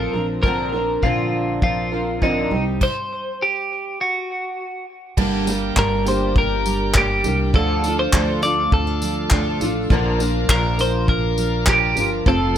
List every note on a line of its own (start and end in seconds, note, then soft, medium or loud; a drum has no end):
0.00 0.11 A1 medium
0.00 0.14 F3 medium
0.00 0.14 C4 medium
0.00 1.32 C4 medium
0.00 0.14 F4 medium
0.00 0.13 A4 medium
0.00 0.26 A#4 medium
0.13 0.99 A#1 medium
0.13 0.43 F3 soft
0.13 0.43 C4 soft
0.13 0.44 D4 soft
0.13 0.43 A#4 soft
0.43 0.73 A#2 medium
0.43 0.73 D3 medium
0.43 0.74 F3 medium
0.43 0.73 C4 medium
0.43 0.72 D4 medium
0.43 1.04 A#4 medium
0.43 0.71 A#4 medium
0.43 kick loud
0.72 1.02 F3 soft
0.72 1.03 C4 soft
0.72 1.03 D4 soft
0.72 1.02 A#4 soft
1.02 2.47 A#1 medium
1.02 1.62 A#2 medium
1.02 1.62 D3 medium
1.02 1.61 F3 medium
1.02 1.62 C4 medium
1.02 1.63 D4 medium
1.02 1.62 F4 medium
1.02 1.63 A#4 medium
1.02 kick medium
1.32 2.57 C4 medium
1.62 1.92 F3 medium
1.62 1.92 C4 medium
1.62 1.92 D4 medium
1.62 2.23 F4 medium
1.62 1.90 A#4 medium
1.62 kick loud
1.91 2.21 F3 soft
1.91 2.22 C4 soft
1.91 2.22 D4 soft
1.91 2.21 A#4 soft
2.21 2.51 A#2 medium
2.21 2.51 D3 medium
2.21 2.52 F3 medium
2.21 2.52 C4 medium
2.21 2.52 D4 medium
2.21 2.64 D#4 medium
2.21 2.51 A#4 medium
2.21 kick medium
2.51 2.78 C2 medium
2.51 2.87 G3 medium
2.51 2.82 C4 soft
2.51 2.82 D#4 soft
2.51 2.81 G4 soft
2.81 3.43 C5 medium
2.81 kick loud
2.81 crash medium
3.43 4.01 G4 medium
4.01 4.85 F#4 medium
5.17 5.73 G1 medium
5.17 5.47 G2 medium
5.17 5.47 D3 medium
5.17 5.47 G3 loud
5.17 5.47 A#3 loud
5.17 5.46 D4 loud
5.17 5.45 G4 loud
5.17 7.51 A#4 medium
5.17 7.53 D5 medium
5.17 7.51 G5 medium
5.17 kick loud
5.17 crash loud
5.46 5.75 G3 medium
5.46 5.76 A#3 medium
5.46 5.77 D4 medium
5.46 5.76 G4 medium
5.46 tambourine medium
5.76 7.20 G1 loud
5.76 6.06 G3 medium
5.76 6.06 A#3 medium
5.76 6.06 D4 medium
5.76 6.04 G4 medium
5.76 6.08 A#4 medium
5.76 kick loud
5.76 clap loud
6.05 6.93 G3 soft
6.05 6.94 A#3 soft
6.05 6.96 D4 medium
6.05 6.95 G4 medium
6.05 6.35 C5 medium
6.05 tambourine medium
6.36 8.72 D4 medium
6.36 6.98 A#4 medium
6.36 kick loud
6.65 7.24 G3 medium
6.65 tambourine medium
6.94 7.24 G3 medium
6.94 7.24 A#3 medium
6.94 7.24 D4 medium
6.94 7.22 G4 medium
6.94 7.38 G4 medium
6.94 kick loud
6.94 clap loud
7.24 7.51 C2 medium
7.24 7.53 G3 soft
7.24 7.54 A#3 soft
7.24 7.53 D4 medium
7.24 7.54 G4 medium
7.24 tambourine medium
7.53 8.09 D2 loud
7.53 7.83 D3 medium
7.53 7.84 F3 medium
7.53 7.84 D4 medium
7.53 7.84 F4 medium
7.53 9.88 A4 medium
7.53 7.82 A4 medium
7.53 7.99 A4 loud
7.53 9.88 D5 medium
7.53 12.58 F5 medium
7.53 kick loud
7.83 8.41 A3 medium
7.83 8.12 D4 soft
7.83 8.13 F4 soft
7.83 8.13 A4 soft
7.83 tambourine medium
7.99 8.43 C5 medium
8.12 8.68 D2 loud
8.12 8.42 F3 medium
8.12 8.43 D4 medium
8.12 8.42 F4 medium
8.12 8.40 A4 medium
8.12 kick loud
8.12 clap loud
8.42 9.30 A3 medium
8.42 9.31 D4 soft
8.42 9.32 F4 medium
8.42 9.31 A4 medium
8.42 8.73 D5 loud
8.42 tambourine medium
8.72 9.27 D2 loud
8.72 8.87 C4 medium
8.72 9.57 A4 medium
8.72 kick loud
8.87 9.96 D4 medium
9.02 9.60 F3 medium
9.02 tambourine medium
9.30 9.58 D2 medium
9.30 9.60 F3 medium
9.30 9.96 A3 medium
9.30 9.61 D4 medium
9.30 9.61 F4 medium
9.30 9.59 A4 medium
9.30 kick loud
9.30 clap loud
9.60 9.88 A1 medium
9.60 9.89 F3 medium
9.60 9.91 D4 medium
9.60 9.91 F4 medium
9.60 9.90 A4 medium
9.60 tambourine medium
9.90 10.45 A#1 loud
9.90 10.20 A#2 medium
9.90 10.20 D3 medium
9.90 10.20 F3 loud
9.90 10.20 A#3 medium
9.90 10.19 D4 loud
9.90 12.24 A#4 medium
9.90 10.18 A#4 loud
9.90 12.24 D5 medium
9.90 kick loud
10.19 10.47 F3 medium
10.19 10.48 A#3 medium
10.19 10.49 D4 medium
10.19 10.49 A#4 medium
10.19 tambourine medium
10.49 11.93 A#1 loud
10.49 10.78 F3 medium
10.49 10.79 A#3 medium
10.49 10.78 D4 medium
10.49 10.80 A#4 loud
10.49 10.77 A#4 medium
10.49 kick medium
10.49 clap loud
10.78 11.66 F3 soft
10.78 11.66 A#3 soft
10.78 11.67 D4 medium
10.78 11.67 A#4 medium
10.78 11.07 C5 loud
10.78 tambourine medium
11.08 12.32 D4 medium
11.08 11.69 A#4 loud
11.08 kick loud
11.38 11.96 F3 medium
11.38 tambourine medium
11.66 11.96 F3 medium
11.66 11.97 A#3 medium
11.66 11.96 D4 medium
11.66 12.09 G4 medium
11.66 11.95 A#4 medium
11.66 kick loud
11.66 clap loud
11.96 12.24 G1 medium
11.96 12.25 F3 soft
11.96 12.26 A#3 medium
11.96 12.26 D4 medium
11.96 12.26 A#4 medium
11.96 tambourine medium
12.26 12.58 F1 loud
12.26 12.56 F3 medium
12.26 12.58 A3 medium
12.26 12.56 C4 medium
12.26 12.56 F4 loud
12.26 12.58 A4 medium
12.26 12.54 A4 loud
12.26 12.58 A4 loud
12.26 12.58 C5 medium
12.26 12.58 C6 medium
12.26 kick loud